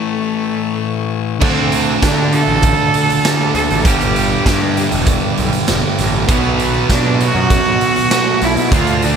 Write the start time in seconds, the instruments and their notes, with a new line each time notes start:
Already playing: distorted electric guitar A2 E3 A3, cello A3, string section A4 E5 C#6
1.40 picked electric bass D2, distorted electric guitar D3 A3, cello C4, string section A4 F5 D6, kick, crash
1.44 distorted electric guitar D4
1.72 closed hi-hat
2.02 picked electric bass D3, cello D4, kick, snare, closed hi-hat
2.32 cello A4, closed hi-hat
2.48 picked electric bass A1
2.63 kick, closed hi-hat
2.94 closed hi-hat
3.10 closed hi-hat
3.25 snare, closed hi-hat
3.54 picked electric bass D2, cello A4, closed hi-hat
3.70 picked electric bass A1, closed hi-hat
3.84 picked electric bass G1, distorted electric guitar G2 D3 G3, cello G4, string section B4 G5, kick, closed hi-hat
4.01 closed hi-hat
4.16 closed hi-hat
4.46 picked electric bass G2, kick, snare, closed hi-hat
4.77 closed hi-hat
4.91 picked electric bass E1, closed hi-hat
5.06 kick, closed hi-hat
5.37 picked electric bass B1, closed hi-hat
5.53 closed hi-hat
5.68 picked electric bass E1, snare, closed hi-hat
5.98 picked electric bass A1, snare, closed hi-hat
6.28 picked electric bass B1, distorted electric guitar B2 F#3 B3, cello B3, string section F#5, kick, closed hi-hat
6.59 closed hi-hat
6.89 picked electric bass B2, cello D4, kick, snare, closed hi-hat
7.20 cello F#4, closed hi-hat
7.35 picked electric bass F#2
7.50 kick, closed hi-hat
7.81 closed hi-hat
7.96 closed hi-hat
8.11 snare, closed hi-hat
8.41 picked electric bass B1, cello E4, snare, closed hi-hat
8.57 picked electric bass B2, closed hi-hat
8.71 picked electric bass D2, distorted electric guitar D3 A3 D4, cello F4, string section A4 F5, kick, closed hi-hat
8.87 closed hi-hat
9.02 cello D4, closed hi-hat